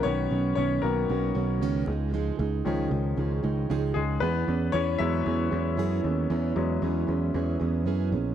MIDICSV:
0, 0, Header, 1, 4, 480
1, 0, Start_track
1, 0, Tempo, 521286
1, 45, Time_signature, 4, 2, 24, 8
1, 7685, End_track
2, 0, Start_track
2, 0, Title_t, "Grand piano"
2, 0, Program_c, 0, 0
2, 0, Control_c, 0, 64, 127
2, 28, Note_on_c, 0, 73, 107
2, 37, Note_on_c, 0, 51, 52
2, 44, Note_on_c, 0, 59, 52
2, 48, Note_on_c, 0, 61, 80
2, 57, Control_c, 0, 64, 0
2, 239, Control_c, 0, 64, 127
2, 360, Note_off_c, 0, 51, 0
2, 364, Note_off_c, 0, 59, 0
2, 494, Note_off_c, 0, 61, 0
2, 496, Note_off_c, 0, 73, 0
2, 510, Note_on_c, 0, 73, 96
2, 530, Note_on_c, 0, 61, 77
2, 751, Note_off_c, 0, 61, 0
2, 753, Note_on_c, 0, 70, 81
2, 761, Note_on_c, 0, 51, 46
2, 765, Note_off_c, 0, 73, 0
2, 765, Note_on_c, 0, 59, 42
2, 767, Note_on_c, 0, 61, 56
2, 771, Note_on_c, 0, 58, 57
2, 979, Note_off_c, 0, 51, 0
2, 981, Note_off_c, 0, 59, 0
2, 982, Note_off_c, 0, 61, 0
2, 1442, Note_off_c, 0, 70, 0
2, 1451, Note_off_c, 0, 58, 0
2, 1738, Control_c, 0, 64, 0
2, 1891, Control_c, 0, 64, 127
2, 2438, Note_on_c, 0, 51, 57
2, 2443, Note_on_c, 0, 53, 56
2, 2449, Note_on_c, 0, 61, 62
2, 3628, Note_on_c, 0, 68, 80
2, 3648, Note_on_c, 0, 56, 59
2, 3844, Note_off_c, 0, 51, 0
2, 3847, Note_off_c, 0, 53, 0
2, 3850, Note_off_c, 0, 61, 0
2, 3870, Note_off_c, 0, 56, 0
2, 3871, Note_on_c, 0, 71, 92
2, 3884, Note_off_c, 0, 68, 0
2, 3890, Note_on_c, 0, 59, 72
2, 3898, Control_c, 0, 64, 0
2, 4079, Control_c, 0, 64, 127
2, 4334, Note_off_c, 0, 59, 0
2, 4349, Note_on_c, 0, 73, 107
2, 4369, Note_on_c, 0, 61, 81
2, 4372, Note_off_c, 0, 71, 0
2, 4590, Note_off_c, 0, 61, 0
2, 4590, Note_on_c, 0, 76, 98
2, 4596, Note_on_c, 0, 54, 58
2, 4602, Note_on_c, 0, 56, 52
2, 4604, Note_off_c, 0, 73, 0
2, 4607, Note_on_c, 0, 61, 65
2, 4609, Note_on_c, 0, 64, 71
2, 5280, Note_off_c, 0, 76, 0
2, 5290, Note_off_c, 0, 64, 0
2, 6025, Note_off_c, 0, 54, 0
2, 6031, Note_off_c, 0, 56, 0
2, 6036, Note_off_c, 0, 61, 0
2, 6038, Note_on_c, 0, 54, 54
2, 6044, Note_on_c, 0, 56, 47
2, 6050, Note_on_c, 0, 61, 58
2, 6725, Note_off_c, 0, 54, 0
2, 6728, Note_off_c, 0, 56, 0
2, 6731, Note_off_c, 0, 61, 0
2, 7685, End_track
3, 0, Start_track
3, 0, Title_t, "Steel-string acoustic guitar"
3, 0, Program_c, 1, 25
3, 43, Note_on_c, 1, 47, 81
3, 48, Note_on_c, 1, 51, 74
3, 51, Note_on_c, 1, 59, 96
3, 56, Note_on_c, 1, 61, 79
3, 60, Note_on_c, 1, 66, 80
3, 271, Note_off_c, 1, 66, 0
3, 282, Note_on_c, 1, 66, 58
3, 284, Note_off_c, 1, 47, 0
3, 284, Note_off_c, 1, 61, 0
3, 287, Note_off_c, 1, 51, 0
3, 288, Note_off_c, 1, 59, 0
3, 295, Note_on_c, 1, 61, 55
3, 305, Note_on_c, 1, 59, 47
3, 522, Note_off_c, 1, 59, 0
3, 524, Note_off_c, 1, 66, 0
3, 525, Note_on_c, 1, 47, 69
3, 526, Note_off_c, 1, 61, 0
3, 530, Note_on_c, 1, 51, 66
3, 534, Note_on_c, 1, 59, 81
3, 537, Note_on_c, 1, 61, 86
3, 541, Note_on_c, 1, 66, 73
3, 751, Note_off_c, 1, 66, 0
3, 762, Note_on_c, 1, 66, 58
3, 764, Note_off_c, 1, 61, 0
3, 765, Note_off_c, 1, 47, 0
3, 768, Note_off_c, 1, 51, 0
3, 769, Note_off_c, 1, 59, 0
3, 775, Note_on_c, 1, 61, 55
3, 787, Note_on_c, 1, 59, 50
3, 997, Note_off_c, 1, 59, 0
3, 999, Note_on_c, 1, 51, 62
3, 1004, Note_off_c, 1, 66, 0
3, 1005, Note_off_c, 1, 61, 0
3, 1008, Note_on_c, 1, 59, 57
3, 1016, Note_on_c, 1, 61, 64
3, 1023, Note_on_c, 1, 66, 70
3, 1228, Note_off_c, 1, 66, 0
3, 1239, Note_on_c, 1, 66, 67
3, 1240, Note_off_c, 1, 61, 0
3, 1242, Note_off_c, 1, 51, 0
3, 1247, Note_off_c, 1, 59, 0
3, 1251, Note_on_c, 1, 61, 58
3, 1263, Note_on_c, 1, 59, 50
3, 1480, Note_off_c, 1, 59, 0
3, 1481, Note_on_c, 1, 47, 80
3, 1482, Note_off_c, 1, 66, 0
3, 1485, Note_off_c, 1, 61, 0
3, 1487, Note_on_c, 1, 51, 88
3, 1491, Note_on_c, 1, 59, 87
3, 1496, Note_on_c, 1, 61, 92
3, 1498, Note_on_c, 1, 66, 94
3, 1715, Note_off_c, 1, 66, 0
3, 1719, Note_on_c, 1, 68, 57
3, 1723, Note_off_c, 1, 47, 0
3, 1726, Note_off_c, 1, 51, 0
3, 1728, Note_off_c, 1, 59, 0
3, 1729, Note_off_c, 1, 61, 0
3, 1732, Note_on_c, 1, 63, 57
3, 1744, Note_on_c, 1, 56, 54
3, 1957, Note_off_c, 1, 56, 0
3, 1959, Note_on_c, 1, 49, 77
3, 1960, Note_off_c, 1, 63, 0
3, 1962, Note_off_c, 1, 68, 0
3, 1965, Note_on_c, 1, 53, 78
3, 1968, Note_on_c, 1, 56, 91
3, 1971, Note_on_c, 1, 63, 85
3, 1975, Note_on_c, 1, 68, 88
3, 2187, Note_off_c, 1, 68, 0
3, 2199, Note_on_c, 1, 68, 60
3, 2202, Note_off_c, 1, 49, 0
3, 2202, Note_off_c, 1, 63, 0
3, 2205, Note_off_c, 1, 53, 0
3, 2207, Note_off_c, 1, 56, 0
3, 2213, Note_on_c, 1, 63, 59
3, 2223, Note_on_c, 1, 56, 52
3, 2439, Note_off_c, 1, 56, 0
3, 2442, Note_off_c, 1, 68, 0
3, 2443, Note_on_c, 1, 49, 85
3, 2444, Note_off_c, 1, 63, 0
3, 2447, Note_on_c, 1, 53, 80
3, 2450, Note_on_c, 1, 56, 84
3, 2455, Note_on_c, 1, 63, 82
3, 2458, Note_on_c, 1, 68, 86
3, 2670, Note_off_c, 1, 68, 0
3, 2681, Note_off_c, 1, 63, 0
3, 2681, Note_on_c, 1, 68, 53
3, 2684, Note_off_c, 1, 49, 0
3, 2686, Note_off_c, 1, 53, 0
3, 2688, Note_off_c, 1, 56, 0
3, 2692, Note_on_c, 1, 63, 47
3, 2703, Note_on_c, 1, 56, 41
3, 2914, Note_off_c, 1, 56, 0
3, 2915, Note_on_c, 1, 53, 68
3, 2921, Note_off_c, 1, 63, 0
3, 2923, Note_off_c, 1, 68, 0
3, 2925, Note_on_c, 1, 56, 67
3, 2932, Note_on_c, 1, 63, 79
3, 2939, Note_on_c, 1, 68, 69
3, 3145, Note_off_c, 1, 68, 0
3, 3156, Note_on_c, 1, 68, 64
3, 3158, Note_off_c, 1, 63, 0
3, 3160, Note_off_c, 1, 53, 0
3, 3165, Note_off_c, 1, 56, 0
3, 3169, Note_on_c, 1, 63, 56
3, 3178, Note_on_c, 1, 56, 48
3, 3400, Note_off_c, 1, 68, 0
3, 3402, Note_off_c, 1, 56, 0
3, 3403, Note_on_c, 1, 49, 91
3, 3407, Note_off_c, 1, 63, 0
3, 3408, Note_on_c, 1, 53, 85
3, 3413, Note_on_c, 1, 56, 101
3, 3416, Note_on_c, 1, 63, 92
3, 3419, Note_on_c, 1, 68, 96
3, 3625, Note_off_c, 1, 68, 0
3, 3636, Note_on_c, 1, 68, 62
3, 3638, Note_off_c, 1, 63, 0
3, 3644, Note_off_c, 1, 49, 0
3, 3646, Note_off_c, 1, 53, 0
3, 3649, Note_off_c, 1, 56, 0
3, 3649, Note_on_c, 1, 63, 59
3, 3660, Note_on_c, 1, 56, 48
3, 3879, Note_on_c, 1, 52, 90
3, 3880, Note_off_c, 1, 56, 0
3, 3881, Note_off_c, 1, 68, 0
3, 3884, Note_on_c, 1, 59, 82
3, 3887, Note_off_c, 1, 63, 0
3, 3891, Note_on_c, 1, 61, 83
3, 3894, Note_on_c, 1, 68, 96
3, 4107, Note_off_c, 1, 68, 0
3, 4118, Note_on_c, 1, 68, 56
3, 4121, Note_off_c, 1, 61, 0
3, 4122, Note_off_c, 1, 52, 0
3, 4124, Note_off_c, 1, 59, 0
3, 4132, Note_on_c, 1, 61, 55
3, 4141, Note_on_c, 1, 59, 50
3, 4356, Note_off_c, 1, 59, 0
3, 4360, Note_off_c, 1, 61, 0
3, 4360, Note_on_c, 1, 52, 88
3, 4361, Note_off_c, 1, 68, 0
3, 4368, Note_on_c, 1, 59, 86
3, 4371, Note_on_c, 1, 61, 85
3, 4377, Note_on_c, 1, 68, 85
3, 4584, Note_off_c, 1, 68, 0
3, 4595, Note_on_c, 1, 68, 60
3, 4597, Note_off_c, 1, 61, 0
3, 4603, Note_off_c, 1, 52, 0
3, 4606, Note_off_c, 1, 59, 0
3, 4608, Note_on_c, 1, 61, 51
3, 4621, Note_on_c, 1, 59, 43
3, 4834, Note_off_c, 1, 59, 0
3, 4837, Note_on_c, 1, 52, 75
3, 4840, Note_off_c, 1, 68, 0
3, 4842, Note_off_c, 1, 61, 0
3, 4845, Note_on_c, 1, 59, 69
3, 4853, Note_on_c, 1, 61, 66
3, 4859, Note_on_c, 1, 68, 69
3, 5064, Note_off_c, 1, 68, 0
3, 5075, Note_on_c, 1, 68, 60
3, 5076, Note_off_c, 1, 61, 0
3, 5081, Note_off_c, 1, 52, 0
3, 5085, Note_off_c, 1, 59, 0
3, 5088, Note_on_c, 1, 61, 54
3, 5098, Note_on_c, 1, 59, 51
3, 5313, Note_off_c, 1, 59, 0
3, 5315, Note_on_c, 1, 52, 89
3, 5316, Note_off_c, 1, 61, 0
3, 5320, Note_off_c, 1, 68, 0
3, 5324, Note_on_c, 1, 59, 86
3, 5327, Note_on_c, 1, 61, 103
3, 5332, Note_on_c, 1, 68, 98
3, 5544, Note_off_c, 1, 68, 0
3, 5555, Note_on_c, 1, 68, 73
3, 5558, Note_off_c, 1, 61, 0
3, 5560, Note_off_c, 1, 52, 0
3, 5564, Note_off_c, 1, 59, 0
3, 5569, Note_on_c, 1, 61, 63
3, 5580, Note_on_c, 1, 59, 52
3, 5794, Note_off_c, 1, 59, 0
3, 5799, Note_off_c, 1, 68, 0
3, 5800, Note_off_c, 1, 61, 0
3, 5800, Note_on_c, 1, 52, 89
3, 5805, Note_on_c, 1, 59, 83
3, 5811, Note_on_c, 1, 61, 98
3, 5815, Note_on_c, 1, 68, 100
3, 6028, Note_off_c, 1, 68, 0
3, 6039, Note_on_c, 1, 68, 61
3, 6040, Note_off_c, 1, 61, 0
3, 6042, Note_off_c, 1, 52, 0
3, 6045, Note_off_c, 1, 59, 0
3, 6051, Note_on_c, 1, 61, 55
3, 6064, Note_on_c, 1, 59, 48
3, 6274, Note_off_c, 1, 59, 0
3, 6278, Note_on_c, 1, 52, 75
3, 6279, Note_off_c, 1, 61, 0
3, 6281, Note_off_c, 1, 68, 0
3, 6285, Note_on_c, 1, 59, 86
3, 6290, Note_on_c, 1, 61, 75
3, 6294, Note_on_c, 1, 68, 85
3, 6500, Note_off_c, 1, 68, 0
3, 6511, Note_on_c, 1, 68, 62
3, 6515, Note_off_c, 1, 61, 0
3, 6521, Note_off_c, 1, 52, 0
3, 6524, Note_off_c, 1, 59, 0
3, 6526, Note_on_c, 1, 61, 54
3, 6536, Note_on_c, 1, 59, 46
3, 6751, Note_off_c, 1, 59, 0
3, 6755, Note_on_c, 1, 52, 67
3, 6757, Note_off_c, 1, 68, 0
3, 6759, Note_off_c, 1, 61, 0
3, 6762, Note_on_c, 1, 59, 69
3, 6770, Note_on_c, 1, 61, 74
3, 6777, Note_on_c, 1, 68, 76
3, 6983, Note_off_c, 1, 68, 0
3, 6994, Note_on_c, 1, 68, 53
3, 6996, Note_off_c, 1, 61, 0
3, 6999, Note_off_c, 1, 52, 0
3, 7003, Note_off_c, 1, 59, 0
3, 7007, Note_on_c, 1, 61, 54
3, 7018, Note_on_c, 1, 59, 50
3, 7230, Note_off_c, 1, 59, 0
3, 7233, Note_on_c, 1, 52, 80
3, 7236, Note_off_c, 1, 61, 0
3, 7238, Note_off_c, 1, 68, 0
3, 7241, Note_on_c, 1, 59, 88
3, 7247, Note_on_c, 1, 61, 93
3, 7251, Note_on_c, 1, 68, 100
3, 7463, Note_off_c, 1, 68, 0
3, 7474, Note_on_c, 1, 68, 62
3, 7477, Note_off_c, 1, 61, 0
3, 7478, Note_off_c, 1, 52, 0
3, 7482, Note_off_c, 1, 59, 0
3, 7488, Note_on_c, 1, 61, 59
3, 7498, Note_on_c, 1, 59, 50
3, 7685, Note_off_c, 1, 59, 0
3, 7685, Note_off_c, 1, 61, 0
3, 7685, Note_off_c, 1, 68, 0
3, 7685, End_track
4, 0, Start_track
4, 0, Title_t, "Picked electric bass"
4, 0, Program_c, 2, 34
4, 44, Note_on_c, 2, 35, 96
4, 241, Note_off_c, 2, 35, 0
4, 286, Note_on_c, 2, 35, 88
4, 483, Note_off_c, 2, 35, 0
4, 524, Note_on_c, 2, 35, 91
4, 722, Note_off_c, 2, 35, 0
4, 767, Note_on_c, 2, 35, 88
4, 963, Note_off_c, 2, 35, 0
4, 1008, Note_on_c, 2, 35, 104
4, 1204, Note_off_c, 2, 35, 0
4, 1245, Note_on_c, 2, 35, 105
4, 1485, Note_off_c, 2, 35, 0
4, 1485, Note_on_c, 2, 37, 89
4, 1682, Note_off_c, 2, 37, 0
4, 1723, Note_on_c, 2, 37, 96
4, 2118, Note_off_c, 2, 37, 0
4, 2203, Note_on_c, 2, 37, 104
4, 2401, Note_off_c, 2, 37, 0
4, 2444, Note_on_c, 2, 37, 91
4, 2641, Note_off_c, 2, 37, 0
4, 2680, Note_on_c, 2, 37, 94
4, 2879, Note_off_c, 2, 37, 0
4, 2922, Note_on_c, 2, 37, 94
4, 3120, Note_off_c, 2, 37, 0
4, 3164, Note_on_c, 2, 37, 104
4, 3361, Note_off_c, 2, 37, 0
4, 3406, Note_on_c, 2, 37, 96
4, 3602, Note_off_c, 2, 37, 0
4, 3644, Note_on_c, 2, 37, 94
4, 3841, Note_off_c, 2, 37, 0
4, 3884, Note_on_c, 2, 40, 100
4, 4081, Note_off_c, 2, 40, 0
4, 4124, Note_on_c, 2, 40, 99
4, 4321, Note_off_c, 2, 40, 0
4, 4364, Note_on_c, 2, 40, 94
4, 4561, Note_off_c, 2, 40, 0
4, 4604, Note_on_c, 2, 40, 100
4, 4801, Note_off_c, 2, 40, 0
4, 4844, Note_on_c, 2, 40, 97
4, 5041, Note_off_c, 2, 40, 0
4, 5084, Note_on_c, 2, 40, 105
4, 5324, Note_off_c, 2, 40, 0
4, 5324, Note_on_c, 2, 42, 94
4, 5521, Note_off_c, 2, 42, 0
4, 5563, Note_on_c, 2, 39, 87
4, 5760, Note_off_c, 2, 39, 0
4, 5803, Note_on_c, 2, 40, 112
4, 6000, Note_off_c, 2, 40, 0
4, 6039, Note_on_c, 2, 40, 107
4, 6238, Note_off_c, 2, 40, 0
4, 6280, Note_on_c, 2, 40, 98
4, 6478, Note_off_c, 2, 40, 0
4, 6521, Note_on_c, 2, 40, 89
4, 6719, Note_off_c, 2, 40, 0
4, 6762, Note_on_c, 2, 40, 94
4, 6959, Note_off_c, 2, 40, 0
4, 7006, Note_on_c, 2, 40, 98
4, 7240, Note_off_c, 2, 40, 0
4, 7240, Note_on_c, 2, 42, 88
4, 7479, Note_on_c, 2, 34, 98
4, 7493, Note_off_c, 2, 42, 0
4, 7678, Note_off_c, 2, 34, 0
4, 7685, End_track
0, 0, End_of_file